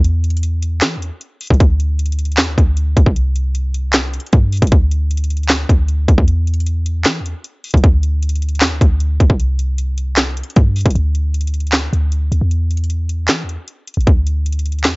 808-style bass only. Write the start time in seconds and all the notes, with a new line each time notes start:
Already playing: E2
0.82 E3
0.97 E2
1.50 A1
1.60 D2
2.38 E2
2.48 D2
2.58 D2
2.97 D2
3.06 C2
4.33 G2
4.62 C2
4.72 D2
5.69 D2
6.08 D2
6.18 E2
7.06 E3
7.20 E2
7.74 A1
7.84 D2
8.62 E2
8.71 D2
8.81 D2
9.20 D2
9.30 C2
10.56 G2
10.86 C2
10.95 D2
11.93 D2
12.32 D2
12.41 E2
13.29 E3
13.44 E2
13.97 A1
14.07 D2
14.85 E2